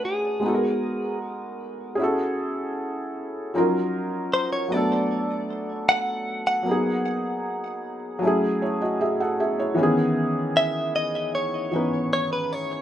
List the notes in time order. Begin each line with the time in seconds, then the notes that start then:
Already playing: A3 C#4 D4 F#4 B4
0.05 G#4
0.40 G#3 B3
0.44 D#4 F#4
0.48 A4
0.55 A#4
1.95 C#4 G#4
1.99 E4 F#4
2.03 A4
3.54 F3 C#4 D#4 F4 A#4
3.60 F#3
4.34 C5
4.53 C#5
4.68 F#3 B3 D5
4.72 A3 D4
4.77 A4
5.89 F#5
6.47 F#5
6.63 F#3 A#3
6.67 B3 D#4
6.71 G#4
8.19 F#3 A3 C#4
8.25 E4 G#4
8.62 E4 C#5
8.81 F#4 D#5
9.01 G#4 E5
9.20 A4 F#5
9.40 G#4 E5
9.59 E4 C#5
9.74 E3 B3
9.79 D#3 C#4
9.83 G#4
10.57 E5
10.96 D#5
11.35 C#5
11.71 E3 B3 C#4 D#4
11.76 B4
12.13 C#5
12.33 B4
12.53 C#5